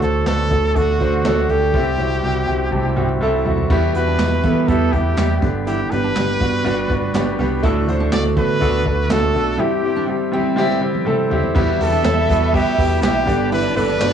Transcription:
Already playing: grand piano A2 A4
0.00 picked electric bass D2, grand piano A3 D4 F#4 C5, trumpet A4, closed hi-hat
0.25 picked electric bass D2, grand piano A3 D4 F#4 B4, trumpet A4, snare, clap, closed hi-hat
0.50 picked electric bass D2, grand piano A3 D4 F#4 A4, kick, closed hi-hat
0.75 picked electric bass D2, grand piano A3 D4 F#4 A4, trumpet F#4, kick, closed hi-hat
1.00 picked electric bass D2, grand piano A3 D4 F#4 C5, kick, closed hi-hat
1.24 picked electric bass D2, grand piano A3 D4 F#4 A4, trumpet F#4, snare, clap, closed hi-hat
1.49 picked electric bass D2, grand piano A3 D4 F#4 A4, trumpet G4, closed hi-hat
1.74 picked electric bass C2, grand piano G2 G3 C4 E4 G4, kick, snare
1.98 picked electric bass C2, grand piano G3 C4 E4 F#4, snare
2.23 picked electric bass C2, grand piano G3 C4 E4 F#4
2.47 picked electric bass C2, grand piano G3 C4 E4 G4 G5
2.71 picked electric bass C2, grand piano G3 C4 E4 G4 A5, kick, mid tom
2.85 mid tom
2.96 picked electric bass C2, grand piano G3 C4 E4 F#4 G5, mid tom
3.09 mid tom
3.21 picked electric bass C2, grand piano G3 C4 E4 A4 E5
3.45 picked electric bass C2, grand piano G3 C4 E4 F#4 E5, floor tom
3.58 floor tom
3.70 picked electric bass E2, grand piano B2 G3 B3 E4 G4, steel-string acoustic guitar E4, kick, crash
3.94 picked electric bass E2, grand piano G3 B3 E4 F#4, trumpet B4, closed hi-hat
4.07 steel-string acoustic guitar D4
4.19 picked electric bass E2, grand piano G3 B3 E4 G4, snare, clap, closed hi-hat, tambourine
4.43 picked electric bass E3, grand piano G3 B3 E4 A4, steel-string acoustic guitar B3, kick, closed hi-hat
4.62 trumpet B4
4.68 picked electric bass E2, grand piano G3 B3 E4 G4, trumpet A4, kick, closed hi-hat
4.93 picked electric bass E2, grand piano G3 B3 E4 G4, trumpet G4, kick, closed hi-hat
5.17 picked electric bass E2, grand piano G3 B3 E4 G4, snare, clap, closed hi-hat, tambourine
5.41 picked electric bass G1, grand piano G2 D3 G3 B3 D4 G4, kick, snare, closed hi-hat
5.67 steel-string acoustic guitar E4, trumpet G4, closed hi-hat
5.91 picked electric bass G1, grand piano G3 B3 D4 G4, trumpet B4, closed hi-hat
6.04 steel-string acoustic guitar D4
6.15 picked electric bass G1, grand piano G3 B3 D4 G4, snare, clap, closed hi-hat, tambourine
6.40 picked electric bass G2, grand piano G3 B3 D4 F#4, steel-string acoustic guitar B3, kick, closed hi-hat
6.64 picked electric bass G1, grand piano G3 B3 D4 F#4, closed hi-hat
6.90 picked electric bass G1, grand piano G3 B3 D4 F#4, kick, closed hi-hat
7.14 picked electric bass G1, grand piano G3 B3 D4 G4, snare, clap, closed hi-hat, tambourine
7.38 picked electric bass C2, grand piano G3 B3 D4 G4, snare, open hi-hat
7.63 picked electric bass D2, grand piano A2 A3 D4 F#4 A4, steel-string acoustic guitar E4, kick, closed hi-hat
7.87 picked electric bass D2, grand piano A3 D4 F#4 C5, closed hi-hat
8.00 steel-string acoustic guitar D4
8.11 picked electric bass D2, grand piano A3 D4 F#4 A4, trumpet D5, snare, clap, closed hi-hat, tambourine
8.36 picked electric bass D3, grand piano A3 D4 F#4 A4, steel-string acoustic guitar B3, trumpet B4, kick, closed hi-hat
8.60 picked electric bass D2, grand piano A3 D4 F#4 A4, kick, closed hi-hat
8.85 picked electric bass D2, grand piano A3 D4 F#4 A4, kick, closed hi-hat
9.10 picked electric bass D2, grand piano A3 D4 F#4 A4, trumpet A4, snare, clap, closed hi-hat, tambourine
9.34 picked electric bass B1, grand piano A3 D4 F#4 A4, open hi-hat
9.57 grand piano G2 G3 C4 E4 G4, steel-string acoustic guitar E4, trumpet G4
9.83 grand piano G3 C4 E4 G4
9.96 steel-string acoustic guitar D4
10.07 grand piano G3 C4 E4 G4
10.32 grand piano G3 C4 E4 G4, steel-string acoustic guitar C4
10.56 grand piano G3 C4 E4 G4, snare
10.70 snare
10.81 grand piano G3 C4 E4 G4
10.95 high tom
11.05 grand piano G3 C4 E4 A4, mid tom
11.30 grand piano G3 C4 E4 G4, floor tom
11.43 floor tom
11.55 picked electric bass E2, grand piano B2 G3 B3 E4 G4, violin section E4 E5, steel-string acoustic guitar E4, kick, crash
11.79 picked electric bass E2, grand piano G3 B3 E4 G4, trumpet A4, hi-hat pedal, open hi-hat
11.93 steel-string acoustic guitar D4
12.03 picked electric bass E2, grand piano G3 B3 E4 A4, snare, clap, hi-hat pedal, open hi-hat, tambourine
12.28 picked electric bass E2, grand piano G3 B3 E4 F#4, steel-string acoustic guitar B3, kick, hi-hat pedal, open hi-hat
12.53 grand piano G3 B3 E4 G4, trumpet G4, kick, hi-hat pedal, open hi-hat
12.77 picked electric bass E2, grand piano G3 B3 E4 G4, kick, hi-hat pedal, open hi-hat
13.01 picked electric bass B1, grand piano G3 B3 E4 G4, trumpet G4, snare, clap, hi-hat pedal, open hi-hat, tambourine
13.26 picked electric bass G1, grand piano G2 D3 G3 B3 D4 G4, violin section D4 D5, kick, snare, hi-hat pedal, open hi-hat
13.52 steel-string acoustic guitar E4, trumpet B4, hi-hat pedal, open hi-hat
13.75 picked electric bass G1, grand piano G3 B3 D4 A4, trumpet B4, hi-hat pedal, open hi-hat
13.89 steel-string acoustic guitar D4
14.00 picked electric bass G1, grand piano G3 B3 D4 F#4, snare, clap, hi-hat pedal, open hi-hat, tambourine

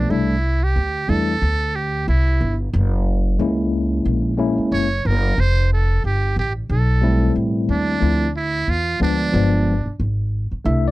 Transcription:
Already playing: tine electric piano B3, muted trumpet D4
0.09 upright bass C2, tine electric piano G3 A3 D4 E4, muted trumpet E4
0.63 muted trumpet G4
0.76 upright bass D2
1.08 upright bass E2, tine electric piano G3 A3 D4 E4, muted trumpet A4
1.42 upright bass D2
1.75 muted trumpet G4
2.08 upright bass C2, muted trumpet E4
2.41 upright bass G1
2.73 upright bass F#1
3.39 upright bass C#2, tine electric piano G#3 A#3 C#4 E4
4.05 upright bass A#1
4.37 tine electric piano G#3 A#3 C#4 E4
4.58 muted upright bass stroke
4.72 upright bass F#1, muted trumpet C#5
5.05 upright bass F#1, muted trumpet A#4
5.38 upright bass F1, muted trumpet C5
5.73 muted trumpet A4
6.04 upright bass G1, muted trumpet G4
6.36 upright bass A1, muted trumpet G4
6.69 upright bass B1, muted trumpet A4
7.01 tine electric piano G3 A3 C4 E4
7.36 upright bass A1
7.69 upright bass D#2, muted trumpet D4
8.00 upright bass D2, tine electric piano F3 A3 C4 E4
8.37 muted trumpet E4
8.68 upright bass E2, muted trumpet F4
9.00 upright bass D2, tine electric piano F3 G#3 B3 D4, muted trumpet D4
9.32 upright bass G1, tine electric piano F3 G#3 B3 D4
9.86 muted upright bass stroke
10.00 upright bass G#1
10.51 muted upright bass stroke
10.65 upright bass C2, tine electric piano A3 D4 E4 E5
10.88 tine electric piano D5

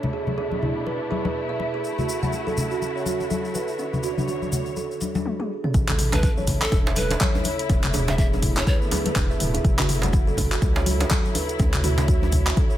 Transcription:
Already playing: string section B2 A3 D4 E4
0.03 muted conga, low conga
0.13 kalimba G#4, open hi-hat
0.27 high conga, low conga
0.38 kalimba G#4, muted conga
0.52 high conga
0.62 kalimba E4, open hi-hat, low conga
0.86 kalimba B4, muted conga
1.11 kalimba G#4, open hi-hat, high conga
1.25 kalimba B4, muted conga, high conga
1.49 kalimba E5
1.60 open hi-hat, muted conga
1.74 kalimba G#4
1.84 string section C#3 F#4, shaker
1.98 kalimba F#4, muted conga, low conga, shaker
2.08 open hi-hat, shaker
2.23 kalimba F#5, high conga, low conga, shaker
2.33 muted conga, shaker
2.47 kalimba A4, high conga, shaker
2.57 open hi-hat, low conga, shaker
2.71 kalimba F#4, shaker
2.82 muted conga, shaker
2.96 kalimba C#5, shaker
3.06 kalimba F#4, open hi-hat, high conga, shaker
3.20 muted conga, shaker
3.30 kalimba A4, high conga, shaker
3.45 shaker
3.54 kalimba B4, open hi-hat, muted conga, shaker
3.68 shaker
3.79 string section D3 C#5, kalimba C#4, shaker
3.93 muted conga, low conga, shaker
4.03 kalimba F#4, open hi-hat, shaker
4.18 high conga, low conga, shaker
4.28 kalimba F#4, muted conga, shaker
4.42 high conga, shaker
4.52 kalimba D4, open hi-hat, low conga, shaker
4.66 shaker
4.76 kalimba A4, muted conga, shaker
4.91 shaker
5.01 kalimba D4, open hi-hat, high conga, shaker
5.15 kalimba D4, muted conga, high conga, shaker
5.26 high tom
5.40 kalimba G#4, high tom
5.64 kalimba C#4, mid tom
5.74 analog synth bass A1, string section C#3 A3 E4, kick, closed hi-hat, mid tom, shaker
5.88 kalimba A4, clap, muted conga, djembe tone, low conga, shaker
5.99 mid tom, open hi-hat, shaker
6.12 pan flute B4, kalimba A5, closed hi-hat, djembe slap, high conga, djembe tone, low conga, shaker
6.23 kick, closed hi-hat, muted conga, shaker
6.37 kalimba C#5, high conga, shaker
6.47 kick, open hi-hat, djembe tone, low conga, shaker
6.62 pan flute A4, kalimba A4, clap, closed hi-hat, shaker
6.72 analog synth bass E1, kick, closed hi-hat, muted conga, djembe tone, shaker
6.86 kalimba E5, djembe slap, shaker
6.96 kalimba A4, pan flute B4, open hi-hat, high conga, shaker
7.10 closed hi-hat, muted conga, djembe slap, djembe tone, shaker
7.21 kalimba C#5, kick, clap, closed hi-hat, high conga, shaker
7.35 djembe tone, shaker
7.44 kalimba C#5, open hi-hat, muted conga, shaker
7.59 closed hi-hat, shaker
7.69 analog synth bass E1, string section D3 A3 B3, kalimba D4, kick, closed hi-hat, djembe tone, shaker
7.82 clap, muted conga, low conga, shaker
7.93 kalimba G#4, mid tom, open hi-hat, djembe tone, shaker
8.08 pan flute E5, closed hi-hat, djembe slap, low conga, shaker
8.18 kalimba G#4, pan flute E5, kick, closed hi-hat, muted conga, shaker
8.33 high conga, djembe tone, shaker
8.43 kalimba E4, kick, open hi-hat, low conga, shaker
8.57 pan flute C#5, clap, closed hi-hat, djembe tone, shaker
8.67 kalimba B4, pan flute C#5, kick, closed hi-hat, muted conga, shaker
8.82 shaker
8.91 kalimba G#4, open hi-hat, djembe slap, djembe tone, high conga, shaker
9.05 kalimba B4, closed hi-hat, muted conga, high conga, shaker
9.16 analog synth bass E1, kick, clap, closed hi-hat, djembe tone, shaker
9.30 kalimba E5, shaker
9.40 analog synth bass D1, mid tom, open hi-hat, muted conga, shaker
9.54 kalimba G#4, closed hi-hat, djembe tone, shaker
9.64 analog synth bass F#1, string section C#3 F#3 E4, kick, closed hi-hat, mid tom, shaker
9.78 kalimba F#4, clap, muted conga, djembe tone, low conga, shaker
9.89 mid tom, open hi-hat, shaker
10.02 kalimba F#5, closed hi-hat, djembe slap, high conga, low conga, shaker
10.13 kick, closed hi-hat, muted conga, djembe tone, shaker
10.27 kalimba A4, high conga, shaker
10.37 kick, open hi-hat, djembe tone, low conga, shaker
10.52 kalimba F#4, clap, closed hi-hat, shaker
10.62 analog synth bass C#2, kick, closed hi-hat, muted conga, shaker
10.76 kalimba C#5, djembe slap, djembe tone, shaker
10.86 kalimba F#4, open hi-hat, high conga, shaker
11.00 closed hi-hat, djembe slap, muted conga, djembe tone, shaker
11.10 kalimba A4, kick, clap, closed hi-hat, high conga, shaker
11.25 shaker
11.35 kalimba B4, open hi-hat, muted conga, djembe tone, shaker
11.49 closed hi-hat, shaker
11.59 analog synth bass D2, string section D3 C#5, kalimba C#4, kick, closed hi-hat, djembe tone, shaker
11.73 clap, muted conga, low conga, shaker
11.84 kalimba F#4, mid tom, open hi-hat, shaker
11.98 closed hi-hat, djembe slap, djembe tone, low conga, shaker
12.08 kalimba F#4, kick, closed hi-hat, muted conga, shaker
12.22 high conga, djembe tone, shaker
12.32 kalimba D4, kick, open hi-hat, low conga, shaker
12.47 clap, closed hi-hat, shaker
12.56 kalimba A4, kick, closed hi-hat, muted conga, djembe tone, shaker
12.70 shaker

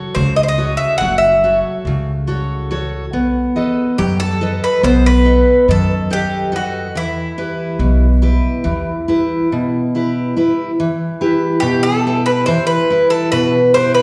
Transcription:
Already playing: steel-string acoustic guitar F#3 F#4 A4 C#5
0.15 upright bass C#2, steel-string acoustic guitar C#3, bouzouki C5
0.36 bouzouki D#5
0.43 bouzouki C5
0.48 bouzouki D#5
0.58 steel-string acoustic guitar F#4 A4 C#5
0.77 bouzouki E5
0.98 upright bass F#1, steel-string acoustic guitar F#3, bouzouki F#5
1.18 bouzouki E5
1.44 steel-string acoustic guitar F#4 A4 C#5
1.85 upright bass C#2, steel-string acoustic guitar C#3
2.27 steel-string acoustic guitar F#4 A4 C#5
2.71 steel-string acoustic guitar F#4 A4 C#5
3.13 upright bass B1, steel-string acoustic guitar B3
3.56 steel-string acoustic guitar A4 B4 D#5
3.98 upright bass F#2, steel-string acoustic guitar F#3, bouzouki G4
4.20 bouzouki A4
4.41 steel-string acoustic guitar A4 B4 D#5
4.64 bouzouki B4
4.83 upright bass B1, steel-string acoustic guitar B3, bouzouki C5
5.06 bouzouki B4
5.25 steel-string acoustic guitar A4 B4 D#5
5.68 upright bass F#2, steel-string acoustic guitar D#3, bouzouki A4
6.10 bouzouki G4, steel-string acoustic guitar A4 B4 D#5
6.52 bouzouki F#4, steel-string acoustic guitar A4 B4 D#5
6.95 upright bass E2, steel-string acoustic guitar E3, bouzouki E4
7.38 steel-string acoustic guitar E4 G4 B4
7.79 upright bass B1, steel-string acoustic guitar B2
8.22 steel-string acoustic guitar E4 G4 B4
8.64 upright bass E2, steel-string acoustic guitar E3
9.08 steel-string acoustic guitar E4 G4 B4
9.52 steel-string acoustic guitar B2
9.95 steel-string acoustic guitar E4 G4 B4
10.37 steel-string acoustic guitar E4 G4 B4
10.80 steel-string acoustic guitar E3
11.21 steel-string acoustic guitar E4 G4 B4
11.60 steel-string acoustic guitar B2, bouzouki G4
11.83 bouzouki A4
12.07 steel-string acoustic guitar E4 G4 B4
12.26 bouzouki B4
12.46 steel-string acoustic guitar E3, bouzouki C5
12.67 bouzouki B4
12.90 steel-string acoustic guitar E4 G4 B4
13.10 bouzouki A4
13.32 steel-string acoustic guitar B2, bouzouki B4
13.74 steel-string acoustic guitar E4 G4 B4, bouzouki C5
13.94 bouzouki B4

